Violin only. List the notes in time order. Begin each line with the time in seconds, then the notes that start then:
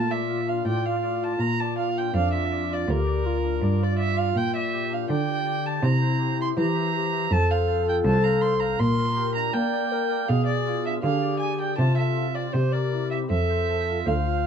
Already playing: A5
0.11 E5
0.49 F5
0.67 G5
0.85 F5
1.23 A5
1.40 A#5
1.60 A5
1.78 F5
1.98 G5
2.16 F5
2.33 E5
2.73 D5
2.90 A#4
3.83 D5
3.99 E5
4.18 F5
4.37 G5
4.56 E5
4.93 F5
5.10 G5
5.66 A5
5.84 A#5
6.41 C6
6.58 A#5
7.32 A5
7.51 F5
7.89 G5
8.06 A5
8.24 A#5
8.41 C6
8.60 A#5
8.80 C6
9.35 A#5
9.53 G5
10.28 F5
10.46 D5
10.86 E5
11.03 F5
11.40 G#5
11.61 G5
11.78 A5
11.97 E5
12.35 D5
12.53 C5
12.72 D5
13.11 E5
13.30 E5
14.07 F5